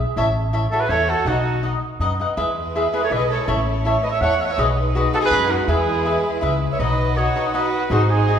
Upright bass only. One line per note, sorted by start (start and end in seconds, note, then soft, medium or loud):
0.16 0.64 A1 medium
0.89 1.13 E2 medium
1.25 1.73 B1 medium
1.99 2.24 F#2 medium
2.37 2.85 E2 medium
3.11 3.35 B1 medium
3.48 3.95 A1 medium
4.21 4.45 E2 medium
4.58 5.05 B1 medium
5.31 5.55 F#2 medium
5.68 6.16 E2 medium
6.42 6.66 C#2 medium
6.79 7.27 B1 medium
7.90 8.38 G#1 loud